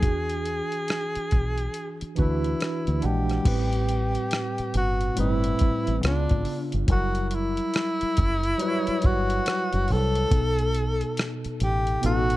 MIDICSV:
0, 0, Header, 1, 6, 480
1, 0, Start_track
1, 0, Tempo, 857143
1, 13, Time_signature, 4, 2, 24, 8
1, 6926, End_track
2, 0, Start_track
2, 0, Title_t, "Tenor saxophone"
2, 0, Program_c, 0, 66
2, 0, Note_on_c, 0, 68, 82
2, 1138, Note_off_c, 0, 68, 0
2, 1233, Note_on_c, 0, 64, 72
2, 1710, Note_on_c, 0, 67, 75
2, 1718, Note_off_c, 0, 64, 0
2, 2662, Note_off_c, 0, 67, 0
2, 2672, Note_on_c, 0, 66, 96
2, 2887, Note_off_c, 0, 66, 0
2, 2912, Note_on_c, 0, 64, 92
2, 3360, Note_off_c, 0, 64, 0
2, 3394, Note_on_c, 0, 62, 84
2, 3713, Note_off_c, 0, 62, 0
2, 3874, Note_on_c, 0, 66, 98
2, 4081, Note_off_c, 0, 66, 0
2, 4081, Note_on_c, 0, 66, 70
2, 4115, Note_on_c, 0, 64, 113
2, 4124, Note_off_c, 0, 66, 0
2, 5076, Note_on_c, 0, 66, 105
2, 5084, Note_off_c, 0, 64, 0
2, 5554, Note_on_c, 0, 69, 117
2, 5562, Note_off_c, 0, 66, 0
2, 6376, Note_off_c, 0, 69, 0
2, 6515, Note_on_c, 0, 67, 98
2, 6728, Note_off_c, 0, 67, 0
2, 6754, Note_on_c, 0, 66, 110
2, 6926, Note_off_c, 0, 66, 0
2, 6926, End_track
3, 0, Start_track
3, 0, Title_t, "Tine electric piano"
3, 0, Program_c, 1, 4
3, 0, Control_c, 1, 64, 127
3, 6, Note_on_c, 1, 52, 53
3, 13, Note_on_c, 1, 62, 54
3, 20, Control_c, 1, 64, 0
3, 20, Note_on_c, 1, 66, 50
3, 26, Note_on_c, 1, 68, 63
3, 122, Control_c, 1, 64, 127
3, 762, Note_off_c, 1, 52, 0
3, 765, Note_off_c, 1, 62, 0
3, 769, Note_off_c, 1, 66, 0
3, 772, Note_off_c, 1, 68, 0
3, 1206, Note_on_c, 1, 52, 73
3, 1214, Note_on_c, 1, 62, 64
3, 1220, Note_on_c, 1, 66, 69
3, 1228, Note_on_c, 1, 71, 85
3, 1611, Note_off_c, 1, 52, 0
3, 1614, Note_off_c, 1, 62, 0
3, 1618, Note_off_c, 1, 66, 0
3, 1621, Note_off_c, 1, 71, 0
3, 1684, Note_on_c, 1, 52, 62
3, 1691, Note_on_c, 1, 62, 62
3, 1699, Note_on_c, 1, 78, 58
3, 1705, Note_on_c, 1, 56, 71
3, 1889, Note_off_c, 1, 52, 0
3, 1893, Note_off_c, 1, 62, 0
3, 1897, Note_off_c, 1, 78, 0
3, 1900, Note_off_c, 1, 56, 0
3, 1926, Note_on_c, 1, 45, 65
3, 1932, Note_on_c, 1, 55, 61
3, 1938, Note_on_c, 1, 60, 58
3, 1942, Control_c, 1, 64, 0
3, 1945, Note_on_c, 1, 71, 70
3, 2051, Control_c, 1, 64, 127
3, 2682, Note_off_c, 1, 45, 0
3, 2685, Note_off_c, 1, 55, 0
3, 2688, Note_off_c, 1, 60, 0
3, 2692, Note_off_c, 1, 71, 0
3, 2885, Note_on_c, 1, 45, 69
3, 2891, Note_on_c, 1, 55, 66
3, 2898, Note_on_c, 1, 60, 66
3, 2906, Note_on_c, 1, 71, 84
3, 3365, Note_on_c, 1, 49, 69
3, 3369, Note_off_c, 1, 45, 0
3, 3372, Note_off_c, 1, 55, 0
3, 3372, Note_on_c, 1, 59, 66
3, 3376, Note_off_c, 1, 60, 0
3, 3379, Note_off_c, 1, 71, 0
3, 3379, Note_on_c, 1, 62, 65
3, 3381, Control_c, 1, 64, 0
3, 3386, Note_on_c, 1, 65, 78
3, 3472, Control_c, 1, 64, 127
3, 3778, Note_off_c, 1, 49, 0
3, 3782, Note_off_c, 1, 59, 0
3, 3785, Note_off_c, 1, 62, 0
3, 3789, Note_off_c, 1, 65, 0
3, 3846, Note_on_c, 1, 54, 65
3, 3853, Note_on_c, 1, 64, 62
3, 3860, Note_on_c, 1, 55, 63
3, 3861, Control_c, 1, 64, 0
3, 3867, Note_on_c, 1, 70, 74
3, 3961, Control_c, 1, 64, 127
3, 4602, Note_off_c, 1, 54, 0
3, 4606, Note_off_c, 1, 64, 0
3, 4609, Note_off_c, 1, 55, 0
3, 4612, Note_off_c, 1, 70, 0
3, 4806, Note_on_c, 1, 54, 89
3, 4812, Note_on_c, 1, 64, 77
3, 4819, Note_on_c, 1, 55, 84
3, 4826, Note_on_c, 1, 71, 83
3, 4863, Note_on_c, 1, 73, 105
3, 4865, Note_off_c, 1, 71, 0
3, 5562, Note_off_c, 1, 54, 0
3, 5565, Note_off_c, 1, 64, 0
3, 5568, Note_off_c, 1, 55, 0
3, 5590, Note_off_c, 1, 73, 0
3, 5767, Note_on_c, 1, 47, 65
3, 5774, Note_on_c, 1, 59, 63
3, 5780, Control_c, 1, 64, 0
3, 5781, Note_on_c, 1, 63, 62
3, 5788, Note_on_c, 1, 68, 63
3, 5824, Note_on_c, 1, 69, 77
3, 5826, Note_off_c, 1, 68, 0
3, 5880, Control_c, 1, 64, 127
3, 6522, Note_off_c, 1, 47, 0
3, 6526, Note_off_c, 1, 59, 0
3, 6529, Note_off_c, 1, 63, 0
3, 6551, Note_off_c, 1, 69, 0
3, 6728, Note_on_c, 1, 47, 78
3, 6736, Note_on_c, 1, 59, 67
3, 6742, Note_on_c, 1, 63, 68
3, 6750, Note_on_c, 1, 69, 82
3, 6926, Note_off_c, 1, 47, 0
3, 6926, Note_off_c, 1, 59, 0
3, 6926, Note_off_c, 1, 63, 0
3, 6926, Note_off_c, 1, 69, 0
3, 6926, End_track
4, 0, Start_track
4, 0, Title_t, "Fingered electric bass"
4, 0, Program_c, 2, 33
4, 18, Note_on_c, 2, 40, 90
4, 337, Note_off_c, 2, 40, 0
4, 745, Note_on_c, 2, 35, 67
4, 937, Note_off_c, 2, 35, 0
4, 1227, Note_on_c, 2, 38, 68
4, 1418, Note_off_c, 2, 38, 0
4, 1612, Note_on_c, 2, 38, 72
4, 1681, Note_off_c, 2, 38, 0
4, 1702, Note_on_c, 2, 34, 84
4, 1895, Note_off_c, 2, 34, 0
4, 1938, Note_on_c, 2, 33, 110
4, 2329, Note_off_c, 2, 33, 0
4, 2660, Note_on_c, 2, 31, 85
4, 2854, Note_off_c, 2, 31, 0
4, 2901, Note_on_c, 2, 31, 89
4, 3095, Note_off_c, 2, 31, 0
4, 3294, Note_on_c, 2, 33, 81
4, 3363, Note_off_c, 2, 33, 0
4, 3384, Note_on_c, 2, 37, 92
4, 3504, Note_off_c, 2, 37, 0
4, 3537, Note_on_c, 2, 32, 79
4, 3604, Note_off_c, 2, 32, 0
4, 3775, Note_on_c, 2, 31, 78
4, 3844, Note_off_c, 2, 31, 0
4, 3858, Note_on_c, 2, 30, 93
4, 4249, Note_off_c, 2, 30, 0
4, 4586, Note_on_c, 2, 30, 90
4, 4777, Note_off_c, 2, 30, 0
4, 5068, Note_on_c, 2, 31, 83
4, 5258, Note_off_c, 2, 31, 0
4, 5453, Note_on_c, 2, 30, 79
4, 5545, Note_on_c, 2, 36, 102
4, 5553, Note_off_c, 2, 30, 0
4, 5737, Note_off_c, 2, 36, 0
4, 5779, Note_on_c, 2, 35, 109
4, 6170, Note_off_c, 2, 35, 0
4, 6504, Note_on_c, 2, 33, 79
4, 6696, Note_off_c, 2, 33, 0
4, 6744, Note_on_c, 2, 33, 95
4, 6926, Note_off_c, 2, 33, 0
4, 6926, End_track
5, 0, Start_track
5, 0, Title_t, "Muted fingered electric bass strokes"
5, 652, Note_on_c, 9, 29, 35
5, 708, Note_off_c, 9, 29, 0
5, 1133, Note_on_c, 9, 29, 42
5, 1189, Note_off_c, 9, 29, 0
5, 2574, Note_on_c, 9, 29, 43
5, 2630, Note_off_c, 9, 29, 0
5, 4495, Note_on_c, 9, 29, 46
5, 4551, Note_off_c, 9, 29, 0
5, 4974, Note_on_c, 9, 29, 47
5, 5030, Note_off_c, 9, 29, 0
5, 6416, Note_on_c, 9, 29, 44
5, 6472, Note_off_c, 9, 29, 0
5, 6926, End_track
6, 0, Start_track
6, 0, Title_t, "Drums"
6, 15, Note_on_c, 9, 36, 93
6, 15, Note_on_c, 9, 42, 74
6, 71, Note_off_c, 9, 36, 0
6, 71, Note_off_c, 9, 42, 0
6, 165, Note_on_c, 9, 42, 42
6, 221, Note_off_c, 9, 42, 0
6, 255, Note_on_c, 9, 42, 55
6, 311, Note_off_c, 9, 42, 0
6, 403, Note_on_c, 9, 42, 35
6, 459, Note_off_c, 9, 42, 0
6, 493, Note_on_c, 9, 42, 66
6, 505, Note_on_c, 9, 37, 95
6, 549, Note_off_c, 9, 42, 0
6, 561, Note_off_c, 9, 37, 0
6, 647, Note_on_c, 9, 42, 42
6, 703, Note_off_c, 9, 42, 0
6, 734, Note_on_c, 9, 42, 60
6, 741, Note_on_c, 9, 36, 77
6, 790, Note_off_c, 9, 42, 0
6, 797, Note_off_c, 9, 36, 0
6, 883, Note_on_c, 9, 42, 39
6, 939, Note_off_c, 9, 42, 0
6, 974, Note_on_c, 9, 42, 71
6, 1030, Note_off_c, 9, 42, 0
6, 1127, Note_on_c, 9, 42, 45
6, 1183, Note_off_c, 9, 42, 0
6, 1211, Note_on_c, 9, 42, 47
6, 1224, Note_on_c, 9, 36, 66
6, 1267, Note_off_c, 9, 42, 0
6, 1280, Note_off_c, 9, 36, 0
6, 1369, Note_on_c, 9, 42, 36
6, 1425, Note_off_c, 9, 42, 0
6, 1459, Note_on_c, 9, 42, 70
6, 1469, Note_on_c, 9, 37, 97
6, 1515, Note_off_c, 9, 42, 0
6, 1525, Note_off_c, 9, 37, 0
6, 1608, Note_on_c, 9, 42, 37
6, 1664, Note_off_c, 9, 42, 0
6, 1692, Note_on_c, 9, 42, 56
6, 1748, Note_off_c, 9, 42, 0
6, 1845, Note_on_c, 9, 42, 43
6, 1854, Note_on_c, 9, 37, 30
6, 1901, Note_off_c, 9, 42, 0
6, 1910, Note_off_c, 9, 37, 0
6, 1934, Note_on_c, 9, 36, 112
6, 1934, Note_on_c, 9, 49, 93
6, 1935, Note_on_c, 9, 42, 85
6, 1990, Note_off_c, 9, 36, 0
6, 1990, Note_off_c, 9, 49, 0
6, 1991, Note_off_c, 9, 42, 0
6, 2087, Note_on_c, 9, 42, 47
6, 2143, Note_off_c, 9, 42, 0
6, 2176, Note_on_c, 9, 42, 59
6, 2232, Note_off_c, 9, 42, 0
6, 2323, Note_on_c, 9, 42, 40
6, 2379, Note_off_c, 9, 42, 0
6, 2413, Note_on_c, 9, 42, 77
6, 2425, Note_on_c, 9, 37, 111
6, 2469, Note_off_c, 9, 42, 0
6, 2481, Note_off_c, 9, 37, 0
6, 2566, Note_on_c, 9, 42, 46
6, 2622, Note_off_c, 9, 42, 0
6, 2654, Note_on_c, 9, 42, 70
6, 2710, Note_off_c, 9, 42, 0
6, 2804, Note_on_c, 9, 42, 43
6, 2860, Note_off_c, 9, 42, 0
6, 2894, Note_on_c, 9, 42, 86
6, 2950, Note_off_c, 9, 42, 0
6, 3045, Note_on_c, 9, 42, 55
6, 3101, Note_off_c, 9, 42, 0
6, 3130, Note_on_c, 9, 42, 59
6, 3144, Note_on_c, 9, 36, 77
6, 3186, Note_off_c, 9, 42, 0
6, 3200, Note_off_c, 9, 36, 0
6, 3288, Note_on_c, 9, 42, 40
6, 3344, Note_off_c, 9, 42, 0
6, 3378, Note_on_c, 9, 42, 82
6, 3388, Note_on_c, 9, 37, 116
6, 3434, Note_off_c, 9, 42, 0
6, 3444, Note_off_c, 9, 37, 0
6, 3525, Note_on_c, 9, 42, 41
6, 3533, Note_on_c, 9, 36, 89
6, 3581, Note_off_c, 9, 42, 0
6, 3589, Note_off_c, 9, 36, 0
6, 3612, Note_on_c, 9, 46, 50
6, 3668, Note_off_c, 9, 46, 0
6, 3765, Note_on_c, 9, 42, 47
6, 3821, Note_off_c, 9, 42, 0
6, 3853, Note_on_c, 9, 36, 113
6, 3853, Note_on_c, 9, 42, 86
6, 3909, Note_off_c, 9, 36, 0
6, 3909, Note_off_c, 9, 42, 0
6, 4003, Note_on_c, 9, 42, 49
6, 4059, Note_off_c, 9, 42, 0
6, 4092, Note_on_c, 9, 42, 64
6, 4148, Note_off_c, 9, 42, 0
6, 4240, Note_on_c, 9, 42, 40
6, 4296, Note_off_c, 9, 42, 0
6, 4333, Note_on_c, 9, 42, 77
6, 4345, Note_on_c, 9, 37, 112
6, 4389, Note_off_c, 9, 42, 0
6, 4401, Note_off_c, 9, 37, 0
6, 4486, Note_on_c, 9, 42, 47
6, 4542, Note_off_c, 9, 42, 0
6, 4574, Note_on_c, 9, 42, 74
6, 4581, Note_on_c, 9, 36, 90
6, 4630, Note_off_c, 9, 42, 0
6, 4637, Note_off_c, 9, 36, 0
6, 4724, Note_on_c, 9, 42, 42
6, 4780, Note_off_c, 9, 42, 0
6, 4813, Note_on_c, 9, 42, 92
6, 4869, Note_off_c, 9, 42, 0
6, 4967, Note_on_c, 9, 42, 49
6, 5023, Note_off_c, 9, 42, 0
6, 5050, Note_on_c, 9, 42, 62
6, 5064, Note_on_c, 9, 36, 78
6, 5106, Note_off_c, 9, 42, 0
6, 5120, Note_off_c, 9, 36, 0
6, 5207, Note_on_c, 9, 42, 42
6, 5263, Note_off_c, 9, 42, 0
6, 5298, Note_on_c, 9, 42, 91
6, 5308, Note_on_c, 9, 37, 107
6, 5354, Note_off_c, 9, 42, 0
6, 5364, Note_off_c, 9, 37, 0
6, 5446, Note_on_c, 9, 42, 44
6, 5502, Note_off_c, 9, 42, 0
6, 5532, Note_on_c, 9, 46, 46
6, 5588, Note_off_c, 9, 46, 0
6, 5687, Note_on_c, 9, 42, 49
6, 5743, Note_off_c, 9, 42, 0
6, 5776, Note_on_c, 9, 36, 114
6, 5776, Note_on_c, 9, 42, 89
6, 5832, Note_off_c, 9, 36, 0
6, 5832, Note_off_c, 9, 42, 0
6, 5928, Note_on_c, 9, 42, 52
6, 5984, Note_off_c, 9, 42, 0
6, 6018, Note_on_c, 9, 42, 63
6, 6074, Note_off_c, 9, 42, 0
6, 6165, Note_on_c, 9, 42, 40
6, 6221, Note_off_c, 9, 42, 0
6, 6257, Note_on_c, 9, 42, 72
6, 6269, Note_on_c, 9, 37, 113
6, 6313, Note_off_c, 9, 42, 0
6, 6325, Note_off_c, 9, 37, 0
6, 6409, Note_on_c, 9, 42, 47
6, 6465, Note_off_c, 9, 42, 0
6, 6498, Note_on_c, 9, 42, 69
6, 6554, Note_off_c, 9, 42, 0
6, 6646, Note_on_c, 9, 42, 41
6, 6702, Note_off_c, 9, 42, 0
6, 6737, Note_on_c, 9, 42, 85
6, 6793, Note_off_c, 9, 42, 0
6, 6889, Note_on_c, 9, 42, 53
6, 6926, Note_off_c, 9, 42, 0
6, 6926, End_track
0, 0, End_of_file